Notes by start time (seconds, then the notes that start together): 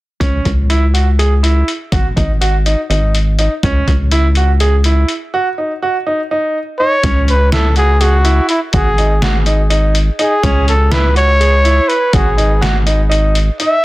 0.20 C#2 C#4, kick, closed hi-hat
0.45 C#2, kick, closed hi-hat
0.70 E4, closed hi-hat
0.94 F#4, closed hi-hat
1.19 G#4, closed hi-hat
1.43 E4, closed hi-hat
1.68 closed hi-hat
1.92 G#1 F#4, kick, closed hi-hat
2.16 G#1 D#4, kick, closed hi-hat
2.41 F#4, closed hi-hat
2.66 D#4, closed hi-hat
2.90 G#1 D#4, closed hi-hat
3.15 closed hi-hat
3.39 D#4, closed hi-hat
3.63 C#2 C#4, kick, closed hi-hat
3.87 C#2, kick, closed hi-hat
4.11 E4, closed hi-hat
4.35 F#4, closed hi-hat
4.60 G#4, closed hi-hat
4.84 E4, closed hi-hat
5.08 closed hi-hat
5.34 F#4
5.58 D#4
5.82 F#4
6.07 D#4
6.31 D#4
6.79 D#4 C#5
7.03 C#2 C#4, kick, closed hi-hat
7.28 B4, closed hi-hat
7.52 E4 A4, snare, closed hi-hat
7.76 F#4 G#4, closed hi-hat
8.01 F#4 G#4, closed hi-hat
8.24 E4, closed hi-hat
8.49 E4, closed hi-hat
8.73 G#1 F#4 G#4, kick, closed hi-hat
8.98 D#4, closed hi-hat
9.22 F#4, snare, closed hi-hat
9.46 D#4, closed hi-hat
9.70 D#4, closed hi-hat
9.95 closed hi-hat
10.19 D#4 G#4, closed hi-hat
10.43 C#2 C#4, kick, closed hi-hat
10.68 A4, closed hi-hat
10.91 E4 B4, snare, closed hi-hat
11.15 F#4 C#5, closed hi-hat
11.40 G#4, closed hi-hat
11.64 E4, closed hi-hat
11.88 B4, closed hi-hat
12.13 G#1 F#4 G#4, kick, closed hi-hat
12.38 D#4, closed hi-hat
12.61 F#4, snare, closed hi-hat
12.86 D#4, closed hi-hat
13.09 D#4, closed hi-hat
13.35 closed hi-hat
13.60 D#4 E5, closed hi-hat